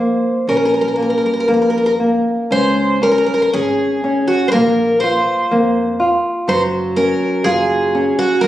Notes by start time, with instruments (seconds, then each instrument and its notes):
Already playing: upright bass F2, twelve-string acoustic guitar C5
0.00 nylon-string guitar A#3
0.47 upright bass A#1, nylon-string guitar C#4, twelve-string acoustic guitar A#4
0.57 twelve-string acoustic guitar A#4
0.65 twelve-string acoustic guitar A#4
0.74 twelve-string acoustic guitar A#4
0.81 twelve-string acoustic guitar A#4
0.88 twelve-string acoustic guitar A#4
0.96 nylon-string guitar A#3, twelve-string acoustic guitar A#4
1.02 twelve-string acoustic guitar A#4
1.10 twelve-string acoustic guitar A#4
1.18 twelve-string acoustic guitar A#4
1.26 twelve-string acoustic guitar A#4
1.34 twelve-string acoustic guitar A#4
1.40 twelve-string acoustic guitar A#4
1.48 upright bass F2, nylon-string guitar A#3, twelve-string acoustic guitar A#4
1.54 twelve-string acoustic guitar A#4
1.62 twelve-string acoustic guitar A#4
1.70 twelve-string acoustic guitar A#4
1.78 twelve-string acoustic guitar A#4
1.86 twelve-string acoustic guitar A#4
2.00 nylon-string guitar A#3
2.51 upright bass C#2, nylon-string guitar C#4, twelve-string acoustic guitar C5
3.02 nylon-string guitar C#4, twelve-string acoustic guitar A#4
3.12 twelve-string acoustic guitar A#4
3.18 twelve-string acoustic guitar A#4
3.26 twelve-string acoustic guitar A#4
3.34 twelve-string acoustic guitar A#4
3.42 twelve-string acoustic guitar A#4
3.53 upright bass G#1, nylon-string guitar C#4, twelve-string acoustic guitar G#4
4.04 nylon-string guitar C#4
4.28 twelve-string acoustic guitar F#4
4.48 twelve-string acoustic guitar A#4 C5
4.53 upright bass A#1, nylon-string guitar A#3
5.00 nylon-string guitar F4, twelve-string acoustic guitar C5
5.51 upright bass F2, nylon-string guitar A#3
6.00 nylon-string guitar F4
6.48 upright bass F#1, nylon-string guitar F#3, twelve-string acoustic guitar C5
6.96 nylon-string guitar C#4, twelve-string acoustic guitar A#4
7.44 upright bass F#1, nylon-string guitar F4, twelve-string acoustic guitar G#4
7.95 nylon-string guitar C#4
8.19 twelve-string acoustic guitar F#4
8.41 upright bass G#1, nylon-string guitar G#3, twelve-string acoustic guitar A#4